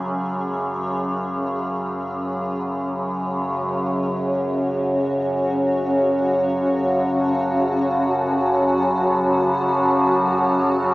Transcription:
0.00 3.65 F#2 medium
0.00 3.64 C#3 medium
0.00 7.16 C#4 medium
0.00 3.65 G#4 medium
0.00 10.94 C#5 medium
0.00 10.94 F#5 medium
3.66 10.94 F#2 medium
3.66 10.94 C#3 medium
3.66 10.94 F#4 medium
6.45 10.94 A5 medium

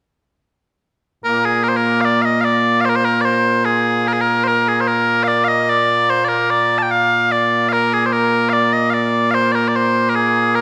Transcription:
1.24 10.61 A#2 medium
1.24 10.61 A#3 medium
1.24 1.45 A#4 medium
1.45 1.63 G#4 medium
1.63 1.69 A#4 medium
1.69 1.77 C5 medium
1.77 2.01 A#4 medium
2.01 2.22 D5 medium
2.01 2.05 F5 medium
2.22 2.41 D#5 medium
2.22 2.25 F5 medium
2.41 2.81 D5 medium
2.41 2.44 F5 medium
2.81 2.85 F5 medium
2.85 2.89 C5 medium
2.89 2.96 A#4 medium
2.96 3.05 C5 loud
3.05 3.21 A#4 medium
3.21 3.65 C5 medium
3.21 3.25 D5 medium
3.65 4.08 G#4 medium
4.08 4.13 A#4 medium
4.13 4.21 G#4 medium
4.21 4.44 A#4 medium
4.44 4.68 A#4 medium
4.44 4.48 C5 medium
4.68 4.81 G#4 medium
4.81 4.88 C5 medium
4.88 5.24 A#4 medium
5.24 5.28 F5 medium
5.28 5.44 D5 medium
5.44 5.69 D#5 medium
5.44 5.48 F5 medium
5.69 6.10 D5 loud
6.10 6.24 C5 loud
6.24 6.29 D5 medium
6.29 6.50 A#4 medium
6.50 6.78 D5 medium
6.78 6.83 A5 medium
6.83 6.91 G5 medium
6.91 7.32 F5 loud
7.32 7.69 D5 medium
7.69 7.73 F5 medium
7.73 7.93 A#4 medium
7.93 8.06 G#4 medium
8.06 8.13 C5 medium
8.13 8.49 A#4 medium
8.49 8.73 D5 medium
8.49 8.53 F5 medium
8.73 8.90 D#5 medium
8.90 9.31 D5 medium
8.90 8.94 F5 medium
9.31 9.52 C5 loud
9.31 9.34 F5 loud
9.52 9.68 A#4 medium
9.52 9.55 D5 medium
9.68 9.76 D5 medium
9.76 10.10 C5 medium
10.10 10.15 A#4 medium
10.15 10.55 G#4 medium
10.55 10.61 A#4 medium

